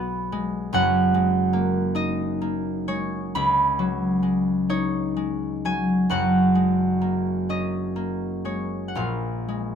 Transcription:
Already playing: B1 F#3 G#3 B3 F#4 D5
0.32 G#3
0.73 F#1 F#2 F#5
1.14 G#3
1.53 A#3
1.95 D#4 D#5
2.42 A#3
2.88 G#3 C#5
3.35 C#2 B5
3.79 F#3
4.23 G#3
4.70 D#4 C#5
5.17 G#3
5.65 F#3 G#5
6.09 F#1 F#2 F#5
6.55 G#3
7.01 A#3
7.49 C#4 D#5
7.96 A#3
8.45 G#3 C#5
8.88 F#5
8.95 A#1 A#2 F5
9.48 G#3

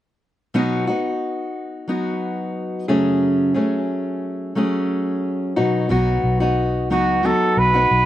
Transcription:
0.54 B2 F#3 B3 D#4 F#4
0.87 B3 D#4 F#4
1.88 F#3 B3 D#4 F#4
2.88 F#2 C#3 F#3 A3 C#4 G#4
3.54 F#3 A3 C#4 G#4
4.55 F#3 A3 C#4 G#4
5.56 B2 F#3 B3 D#4 F#4
5.89 B1 F#3 B3 D#4 F#4
6.24 B1
6.40 B3 D#4 F#4
6.90 C#2 F#3 B3 D#4 F#4
7.23 F#3 B3 D#4 F#4 A4
7.57 B1 B4
7.74 B3 D#4 F#4
7.91 B1

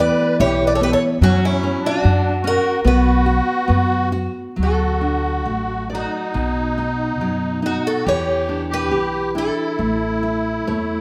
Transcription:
Already playing: E2 E3 B3
0.00 B4 D5
0.40 B1 E4 G4 C#5
0.65 B4 D5
0.73 A4 C#5
0.81 B3 G4 B4
0.91 A4 C#5
1.21 F#2 F#3 C#4 F#4
1.41 C#4 E4
1.63 C#4
1.81 D4
1.86 F#4
2.03 F#2 F#3
2.42 C#4 F#4
2.47 A#4
2.84 B1 B3 F#4 B4
3.26 F#4
3.68 F#2 B3
4.12 F#4
4.56 D2 F#3
4.61 F#4 A4
5.01 D4
5.46 A1 A3
5.90 D#4 D5
5.95 F#4
6.34 B1 B2
6.78 D#4
7.21 F#2 F#3
7.62 D#4 F#4
7.84 F#4 A4
8.04 E2 E3 G4
8.08 C#5
8.49 D4
8.69 G4
8.74 B4
8.91 B1 G4
9.35 D4 E4 A4
9.79 A1 A3
10.23 E4
10.67 E2 A3 C#5

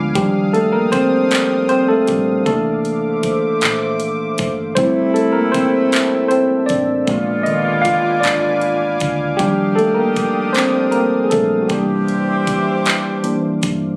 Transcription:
Already playing: D2 G#3 B3 D4 B4 F5 G#5 D6
0.15 D#2 F3 G3 D4 G4 G5 D#6, kick, closed hi-hat
0.53 A3 A4, closed hi-hat
0.73 A#3 A#4
0.92 C4 C5, kick, closed hi-hat
1.31 clap, closed hi-hat
1.69 C4 C5, closed hi-hat
1.88 A3 A4
2.07 A#1 F3 G3 D4 G4, kick, closed hi-hat
2.46 C2 E3 A3 A#3 D4 A4 C5 E5 D6, kick, closed hi-hat
2.85 closed hi-hat
3.23 kick, closed hi-hat
3.61 A#1, clap, closed hi-hat
4.00 closed hi-hat
4.38 G1, kick, closed hi-hat
4.75 F1 C3 G3 A3 C4 E4 A4 C5 E5 G5 E6, kick, closed hi-hat
5.14 A3 A4, closed hi-hat
5.33 A#3 A#4
5.52 C4 C5, kick, closed hi-hat
5.92 clap, closed hi-hat
6.28 C4 C5, closed hi-hat
6.66 D4 D5, kick, closed hi-hat
6.71 A1
7.07 A#1 D3 G#3 A#3 B3 F4 B4 F5 G#5 D6, kick, closed hi-hat
7.43 D#3 D#5, closed hi-hat
7.82 F4 F5, kick, closed hi-hat
8.20 D4 D5, closed hi-hat
8.25 G#1, clap
8.61 closed hi-hat
9.00 D2, kick, closed hi-hat
9.37 D#2 D#3 F3 G3 D4 G4 G5 D#6, kick, closed hi-hat
9.76 A3 A4, closed hi-hat
9.94 A#3 A#4
10.16 kick, closed hi-hat
10.53 C4 C5, clap, closed hi-hat
10.92 A#3 A#4, closed hi-hat
11.24 G#4
11.30 A#1 F3 G3 A3 D4 A4, kick, closed hi-hat
11.62 F#4
11.68 C2 E3 G3 A#3 D4 G4 C5 E5 D6, kick, closed hi-hat
12.08 closed hi-hat
12.47 kick, closed hi-hat
12.86 A#1, clap, closed hi-hat
13.23 E3 A#3 D4, closed hi-hat
13.63 G1, kick, closed hi-hat

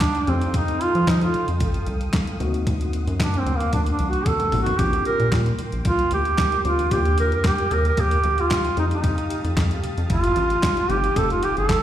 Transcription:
Already playing: D4 F5 G5 D#6
0.01 kick, snare, clap, closed hi-hat, high conga
0.15 closed hi-hat, muted conga
0.27 F2 A3 C4 D#4 G4 A4 D#6, closed hi-hat, high conga, low conga
0.41 closed hi-hat
0.54 D#4, kick, closed hi-hat, muted conga, low conga
0.68 closed hi-hat, muted conga
0.81 F4, closed hi-hat
0.95 F3, closed hi-hat
1.07 F3 D#4, kick, snare, clap, closed hi-hat, muted conga
1.21 F4, closed hi-hat, muted conga
1.34 closed hi-hat, low conga
1.48 F2, closed hi-hat
1.60 A1, kick, closed hi-hat, muted conga, high conga
1.74 closed hi-hat
1.87 C2, closed hi-hat, high conga
2.01 closed hi-hat
2.13 kick, snare, clap, closed hi-hat, muted conga, high conga
2.27 closed hi-hat, muted conga
2.40 D2 A#3 C4 D#4 F#4 F#5 C6, closed hi-hat, high conga, low conga
2.54 closed hi-hat
2.67 D2, kick, closed hi-hat, muted conga, low conga
2.81 closed hi-hat, muted conga
2.93 closed hi-hat
3.07 F#2, closed hi-hat
3.20 D4, kick, snare, clap, closed hi-hat, muted conga
3.34 closed hi-hat
3.39 C4
3.46 D2, closed hi-hat, low conga
3.56 A#3
3.60 closed hi-hat
3.73 D2 D4, kick, closed hi-hat, muted conga, high conga
3.86 closed hi-hat, muted conga
3.91 D4
3.99 C2, closed hi-hat, high conga
4.09 F#4, closed hi-hat
4.26 A4, kick, closed hi-hat, high tom, high conga
4.40 closed hi-hat, mid tom, muted conga
4.52 A1 A#3 C4 D#4 F#4, mid tom, open hi-hat, high conga, low conga
4.62 F#4
4.66 closed hi-hat, floor tom
4.79 A#1 C4 D4 F4 F#4 G4 G5 D6, kick, closed hi-hat, muted conga, low conga
4.86 G4
4.93 closed hi-hat, muted conga
5.05 A#4, closed hi-hat
5.20 A#2, closed hi-hat
5.32 A#2, kick, snare, clap, closed hi-hat, muted conga
5.46 closed hi-hat, muted conga
5.59 closed hi-hat, low conga
5.72 A#1, closed hi-hat
5.85 C2 F4, kick, closed hi-hat, muted conga, high conga
5.99 closed hi-hat, muted conga
6.11 D2 G4, closed hi-hat, high conga
6.25 closed hi-hat
6.38 kick, snare, clap, closed hi-hat, muted conga, high conga
6.52 closed hi-hat, muted conga
6.65 D2 C4 D4 F4 G4, closed hi-hat, high conga, low conga
6.79 closed hi-hat
6.91 D#2 A#3 D4 F4 G4 F5 D#6, kick, closed hi-hat, low conga
7.05 closed hi-hat, muted conga
7.18 A#4, closed hi-hat
7.32 F2 A#4, closed hi-hat
7.44 G4, kick, snare, clap, closed hi-hat
7.58 closed hi-hat, muted conga
7.71 D#2 A#4, closed hi-hat, low conga
7.85 A#4, closed hi-hat
7.97 D#2 G4, kick, closed hi-hat, muted conga, high conga
8.11 closed hi-hat, muted conga
8.24 D2, closed hi-hat, high conga
8.38 F4, closed hi-hat
8.51 kick, snare, clap, closed hi-hat, high conga
8.65 closed hi-hat
8.77 F2 A3 C4 D#4 G4 A5, closed hi-hat, high conga, low conga
8.91 D#4, closed hi-hat
9.04 kick, closed hi-hat, muted conga, low conga
9.18 closed hi-hat
9.30 closed hi-hat
9.44 F2, closed hi-hat
9.57 F2, kick, snare, clap, closed hi-hat
9.71 closed hi-hat, muted conga
9.84 closed hi-hat, low conga
9.98 F2, closed hi-hat
10.10 G1 F4, kick, closed hi-hat, muted conga, high conga
10.24 closed hi-hat
10.36 A1, closed hi-hat, high conga
10.50 closed hi-hat
10.63 kick, snare, clap, closed hi-hat, high conga
10.77 closed hi-hat, muted conga
10.89 G1 A3 C4 D#4 G4, closed hi-hat, high conga, low conga
11.04 closed hi-hat
11.16 F1 A3 C4 D#4 G4 A4, kick, closed hi-hat, muted conga, low conga
11.30 F4, closed hi-hat
11.43 G4, closed hi-hat
11.57 G1 A4, closed hi-hat
11.69 kick, snare, clap, closed hi-hat

